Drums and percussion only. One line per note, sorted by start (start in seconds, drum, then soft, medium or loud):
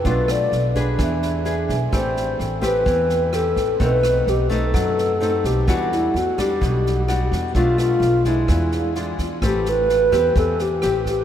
0.04 kick medium
0.04 snare soft
0.28 cross-stick medium
0.28 snare soft
0.52 snare soft
0.75 kick soft
0.75 snare soft
0.99 kick medium
0.99 cross-stick medium
0.99 snare soft
1.22 snare soft
1.45 snare soft
1.69 kick soft
1.69 snare soft
1.93 kick medium
1.93 cross-stick medium
1.93 snare soft
2.17 snare soft
2.40 snare soft
2.63 kick soft
2.63 cross-stick soft
2.63 snare soft
2.86 kick soft
2.86 snare soft
3.09 snare soft
3.33 cross-stick medium
3.33 snare soft
3.56 kick soft
3.56 snare soft
3.80 kick medium
3.80 snare soft
4.03 cross-stick medium
4.03 snare soft
4.27 snare soft
4.50 kick soft
4.50 snare soft
4.74 kick medium
4.74 cross-stick medium
4.74 snare soft
4.98 snare soft
5.22 snare soft
5.44 kick soft
5.44 snare soft
5.68 kick medium
5.68 cross-stick medium
5.68 snare soft
5.92 snare soft
6.15 snare soft
6.38 kick soft
6.38 cross-stick medium
6.38 snare soft
6.62 kick soft
6.62 snare soft
6.86 snare soft
7.08 cross-stick soft
7.08 snare soft
7.32 kick soft
7.32 snare soft
7.55 kick medium
7.55 snare soft
7.78 cross-stick medium
7.78 snare soft
8.01 snare soft
8.24 kick soft
8.24 snare soft
8.48 kick medium
8.48 cross-stick medium
8.48 snare soft
8.72 snare soft
8.95 snare soft
9.18 kick soft
9.18 snare soft
9.42 kick medium
9.42 cross-stick medium
9.42 snare soft
9.66 snare soft
9.89 snare soft
10.12 kick soft
10.12 cross-stick medium
10.12 snare soft
10.36 kick medium
10.36 snare soft
10.59 snare soft
10.82 cross-stick medium
10.82 snare soft
11.06 kick soft
11.06 snare soft